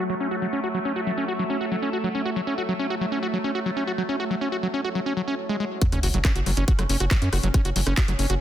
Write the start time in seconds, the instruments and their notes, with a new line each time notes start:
Already playing: synth drone F#3 A3, ambient pad F#4 C#5 E5
0.10 acid bass F#3
0.20 acid bass C#4
0.31 acid bass F#4
0.42 acid bass F#3
0.53 acid bass C#4
0.64 acid bass F#4
0.74 acid bass F#3
0.85 acid bass C#4
0.96 acid bass F#4
1.07 acid bass F#3
1.18 acid bass C#4
1.28 acid bass F#4
1.39 acid bass F#3
1.50 acid bass C#4
1.61 acid bass F#4
1.72 acid bass F#3
1.82 acid bass C#4
1.93 acid bass F#4
2.04 acid bass F#3
2.15 acid bass C#4
2.25 acid bass F#4
2.36 acid bass F#3
2.47 acid bass C#4
2.58 acid bass F#4
2.69 acid bass F#3
2.79 acid bass C#4
2.90 acid bass F#4
3.01 acid bass F#3
3.12 acid bass C#4
3.23 acid bass F#4
3.33 acid bass F#3
3.44 acid bass C#4
3.55 acid bass F#4
3.66 acid bass F#3
3.77 acid bass C#4
3.87 acid bass F#4
3.98 acid bass F#3
4.09 acid bass C#4
4.20 acid bass F#4
4.30 acid bass F#3
4.41 acid bass C#4
4.52 acid bass F#4
4.63 acid bass F#3
4.74 acid bass C#4
4.84 acid bass F#4
4.95 acid bass F#3
5.06 acid bass C#4
5.17 acid bass F#3
5.28 acid bass C#4
5.49 acid bass G#3
5.60 acid bass G#3
5.82 acid bass F#3, synth drone C#4, kick, closed hi-hat, sub drop
5.92 analog synth bass F#1, acid bass C#4, cross-stick, closed hi-hat
6.03 analog synth bass F#1, acid bass F#4, open hi-hat
6.14 analog synth bass F#1, acid bass F#3, closed hi-hat
6.25 acid bass C#4, kick, cross-stick, clap, closed hi-hat
6.36 analog synth bass F#1, acid bass F#4, closed hi-hat
6.46 analog synth bass F#1, acid bass F#3, cross-stick, open hi-hat
6.57 analog synth bass F#1, acid bass C#4, closed hi-hat
6.68 acid bass F#4, kick, closed hi-hat
6.79 analog synth bass F#1, acid bass F#3, cross-stick, closed hi-hat
6.89 analog synth bass F#1, acid bass C#4, open hi-hat
7.00 analog synth bass F#1, acid bass F#4, cross-stick, closed hi-hat
7.11 acid bass F#3, kick, clap, closed hi-hat
7.22 analog synth bass F#2, acid bass C#4, closed hi-hat
7.33 analog synth bass F#1, acid bass F#4, cross-stick, open hi-hat
7.43 analog synth bass F#1, acid bass F#3, closed hi-hat
7.54 acid bass C#4, kick, cross-stick, closed hi-hat
7.65 analog synth bass F#1, acid bass F#4, closed hi-hat
7.76 analog synth bass F#1, acid bass F#3, open hi-hat
7.87 analog synth bass F#1, acid bass C#4, cross-stick, closed hi-hat
7.97 acid bass F#4, kick, clap, closed hi-hat
8.08 analog synth bass F#1, acid bass F#3, cross-stick, closed hi-hat
8.19 analog synth bass F#1, acid bass C#4, open hi-hat
8.30 analog synth bass F#1, acid bass F#4, closed hi-hat